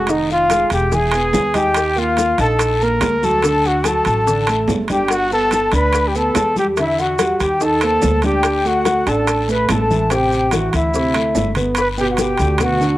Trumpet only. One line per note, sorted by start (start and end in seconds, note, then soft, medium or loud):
0.00 0.12 F#4 medium
0.10 0.30 D#4 loud
0.33 0.70 F4 loud
0.74 0.97 G4 medium
0.95 1.58 G#4 loud
1.56 2.00 G4 loud
1.99 2.39 F4 loud
2.42 2.85 A4 loud
2.83 3.26 A#4 loud
3.25 3.69 A4 loud
3.68 3.89 F#4 loud
3.88 4.70 A4 medium
4.92 5.13 G4 medium
5.12 5.32 F#4 loud
5.33 5.71 A4 loud
5.75 6.09 B4 medium
6.08 6.18 G4 medium
6.16 6.57 A4 loud
6.59 6.67 G4 medium
6.81 7.03 E4 medium
7.01 7.41 F#4 medium
7.42 7.65 G4 medium
7.64 8.25 A4 loud
8.25 8.69 G4 medium
8.67 9.10 F#4 loud
9.09 9.49 A4 medium
9.50 9.69 B4 medium
9.70 10.13 A4 medium
10.12 10.55 G4 medium
10.53 10.74 F#4 medium
10.76 11.54 E4 medium
11.80 11.89 B4 loud
12.01 12.06 G4 loud
12.13 12.23 F#4 medium
12.22 12.62 G4 medium
12.64 12.98 F#4 medium